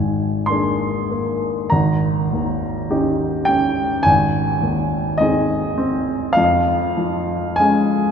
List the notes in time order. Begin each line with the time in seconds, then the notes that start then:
Already playing: G#1 G#2 G#5
0.46 A#3 G#4 C6
0.50 D4
1.11 A#3
1.70 G#1 A#5
2.33 D#2
2.90 C#4 D#4 G4
3.45 C#4 G5
4.03 G#1 G#5
4.62 D#2
5.18 C4 D#4 D#5
5.22 G#4
5.78 C4
6.33 F2 F5
6.97 F3
7.56 G#3 C#4 G#4 G#5